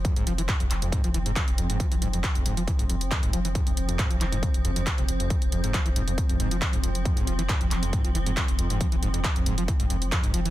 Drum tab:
HH |xxoxxxoxxxoxxxox|xxoxxxoxxxoxxxox|xxoxxxoxxxoxxxox|xxoxxxoxxxoxxxox|
CP |----x-x-----x---|----x-------x---|----x-x-----x---|----x-------x---|
BD |o---o---o---o---|o---o---o---o---|o---o---o---o---|o---o---o---o---|

HH |xxoxxxoxxxoxxxox|xxoxxxoxxxoxxxox|
CP |----x-x-----x---|----x-------x---|
BD |o---o---o---o---|o---o---o---o---|